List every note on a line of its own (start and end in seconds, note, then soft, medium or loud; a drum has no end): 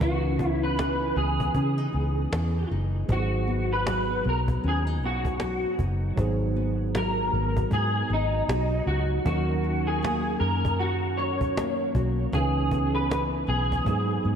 0.00 1.13 C#2 loud
0.00 3.10 C#3 medium
0.00 3.05 E3 medium
0.00 0.39 C#4 medium
0.00 3.06 C#4 medium
0.00 0.11 D#4 soft
0.00 3.06 D#4 medium
0.00 0.47 F#4 medium
0.00 0.11 A#4 medium
0.00 cajon bass loud
0.05 3.08 B4 medium
0.24 cajon slap soft
0.39 1.16 B3 medium
0.39 cajon bass medium
0.47 0.59 E4 medium
0.62 1.17 B4 medium
0.62 cajon slap soft
0.77 2.31 E3 medium
0.77 cajon slap loud
1.01 cajon slap soft
1.16 1.48 C#2 medium
1.16 1.93 B3 medium
1.16 2.67 G#4 medium
1.16 cajon slap soft
1.40 cajon bass medium
1.54 1.86 C#3 medium
1.54 1.78 C#4 medium
1.54 cajon bass medium
1.78 2.70 D#4 medium
1.78 cajon slap soft
1.92 2.25 C#2 medium
1.92 3.47 B3 medium
1.92 cajon slap soft
2.16 cajon slap soft
2.32 2.63 E2 medium
2.32 3.19 E3 medium
2.32 cajon slap loud
2.54 cajon slap soft
2.70 3.02 F#1 medium
2.70 4.63 D#4 medium
2.70 cajon slap soft
2.94 cajon slap soft
3.08 4.21 G#1 loud
3.08 6.17 G#2 medium
3.08 6.13 F#3 medium
3.08 6.14 B3 medium
3.08 6.15 D#4 medium
3.08 3.75 F#4 medium
3.08 cajon bass loud
3.13 3.19 F#4 medium
3.19 6.19 G#4 medium
3.32 cajon slap soft
3.47 4.23 B3 medium
3.47 cajon slap soft
3.70 4.22 B4 medium
3.70 cajon slap soft
3.87 5.42 F#3 medium
3.87 cajon slap loud
4.09 cajon slap soft
4.24 4.56 B1 medium
4.24 5.02 B3 medium
4.24 cajon slap soft
4.29 4.39 A#4 medium
4.48 cajon bass medium
4.62 5.02 D#2 medium
4.62 4.87 C#4 medium
4.62 cajon slap soft
4.68 4.78 G#4 medium
4.85 5.79 D#4 medium
4.85 cajon slap soft
5.00 5.64 B1 medium
5.00 6.55 B3 medium
5.00 cajon slap soft
5.06 5.77 F#4 medium
5.25 cajon bass medium
5.40 6.94 F#3 medium
5.40 cajon slap loud
5.79 6.10 F#1 medium
5.79 7.71 D#4 medium
5.79 cajon bass medium
6.02 cajon slap soft
6.16 7.29 G#1 medium
6.16 9.26 G#2 medium
6.16 9.21 F#3 medium
6.16 9.22 B3 medium
6.16 9.23 D#4 medium
6.16 cajon bass loud
6.21 9.23 G#4 medium
6.41 cajon slap soft
6.55 7.33 B3 medium
6.55 cajon slap soft
6.78 cajon slap soft
6.95 8.49 F#3 medium
6.95 7.73 A#4 medium
6.95 cajon slap loud
7.18 cajon slap soft
7.33 7.64 G#1 medium
7.33 8.09 B3 medium
7.33 cajon slap soft
7.57 cajon bass medium
7.71 8.02 G#2 loud
7.71 8.87 D#4 medium
7.71 8.09 G#4 medium
7.71 cajon bass medium
7.95 cajon slap soft
8.09 8.41 G#1 medium
8.09 9.35 B3 medium
8.09 8.87 D#4 medium
8.09 cajon slap soft
8.33 cajon slap soft
8.48 8.79 B1 medium
8.48 10.02 F#3 medium
8.48 cajon slap loud
8.87 9.18 C#2 medium
8.87 9.67 D#4 medium
8.87 9.25 F#4 medium
8.87 cajon slap soft
9.11 cajon slap soft
9.25 10.37 D#2 loud
9.25 12.32 D#3 medium
9.25 12.29 F#3 medium
9.25 12.30 C#4 medium
9.25 12.31 D#4 medium
9.25 9.89 F#4 medium
9.25 cajon bass loud
9.30 12.32 A#4 medium
9.50 cajon slap soft
9.64 10.41 C#4 medium
9.64 cajon slap soft
9.87 10.40 G#4 medium
9.87 cajon slap soft
10.02 11.56 A#3 medium
10.02 cajon slap loud
10.27 cajon slap soft
10.40 11.91 F#2 medium
10.40 11.19 C#4 medium
10.40 10.80 A#4 medium
10.40 cajon slap soft
10.65 cajon bass medium
10.79 11.19 F#4 medium
10.79 11.94 F#4 medium
10.79 cajon slap soft
11.03 cajon slap soft
11.17 12.43 C#4 medium
11.17 11.91 C#5 medium
11.17 cajon slap soft
11.41 cajon bass medium
11.57 12.43 A#3 medium
11.57 cajon slap loud
11.95 12.26 B1 medium
11.95 12.43 F#4 medium
11.95 cajon bass medium
12.18 cajon slap soft
12.32 13.45 C#2 loud
12.32 13.96 C#3 medium
12.32 13.83 E3 medium
12.32 13.84 C#4 medium
12.32 13.85 D#4 medium
12.32 12.94 G#4 medium
12.32 cajon bass loud
12.37 13.86 B4 medium
12.57 cajon slap soft
12.71 13.47 B3 medium
12.71 cajon bass medium
12.94 13.08 B4 medium
12.94 cajon slap soft
13.09 13.96 E3 medium
13.09 13.20 B4 medium
13.09 cajon slap loud
13.35 cajon slap soft
13.47 13.79 B1 medium
13.47 14.25 B3 medium
13.47 14.36 G#4 medium
13.47 cajon slap soft
13.72 cajon bass medium
13.85 14.36 G#2 medium
13.85 14.18 G#2 medium
13.85 14.36 F#3 medium
13.85 14.36 B3 medium
13.85 cajon bass medium
13.89 14.36 D#4 medium
13.89 14.36 G#4 medium
14.10 cajon slap soft
14.23 14.36 G#2 medium
14.23 14.36 B3 medium
14.23 cajon slap soft